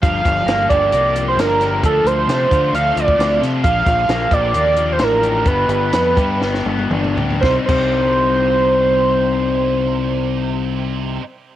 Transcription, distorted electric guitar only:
X:1
M:4/4
L:1/8
Q:1/4=128
K:Cdor
V:1 name="Distorted electric guitar" clef=bass
[G,,D,G,B,D]3 [G,,D,G,B,D]3 [G,,D,G,B,D]2 | [D,F,A,D]3 [D,F,A,D]3 [D,F,A,D]2 | [B,,D,F,B,D]3 [B,,D,F,B,D]3 [B,,D,F,B,D]2 | [G,,D,G,=B,D]3 [G,,D,G,B,D]3 [G,,D,G,B,D]2 |
[C,G,CE] [C,G,CE]6- [C,G,CE]- | [C,G,CE]8 |]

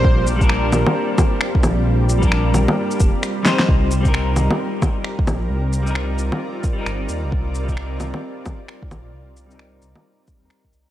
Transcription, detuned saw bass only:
X:1
M:4/4
L:1/16
Q:"Swing 16ths" 1/4=132
K:Cdor
V:1 name="Detuned saw bass" clef=bass
B,,,6 B,,, z6 z B,,,2 | B,,,6 B,,, z3 F,,, z4 z | C,,6 C,, z6 z B,,,2 | C,,6 C,, z4 z G,,,2 E,, C,, |
C,,6 C,, z6 z B,,,2 | C,,6 C,, z4 E,, z2 C,, z |]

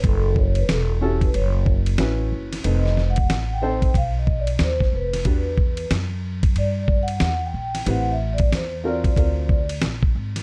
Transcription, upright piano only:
X:1
M:4/4
L:1/8
Q:"Swing 16ths" 1/4=92
K:Edor
V:1 name="Upright piano"
z3 [CEFA] z2 [CEFB]2 | [=C_EAB] z2 [CEA=c] z4 | [DFGB] z6 z | [=CEGB] z2 [C=F^F_B] [C^EF^A] z3 |]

